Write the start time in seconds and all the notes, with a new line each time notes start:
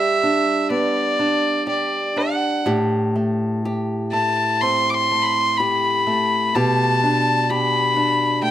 Already playing: G3 D4 G4 E5
0.23 D4
0.70 B3 D5
1.19 D4
1.67 G4 D5
2.16 D4 F#5
2.66 A2 G4
3.16 A3
3.65 G4
4.12 A3 A5
4.61 C4 C6
4.90 D6
4.94 C6
5.11 A3
5.22 B5 C6
5.57 G4 B5
6.07 A3
6.54 B2 G4 A5
7.03 D4
7.50 G4 B5
7.96 D4
8.42 A3 G5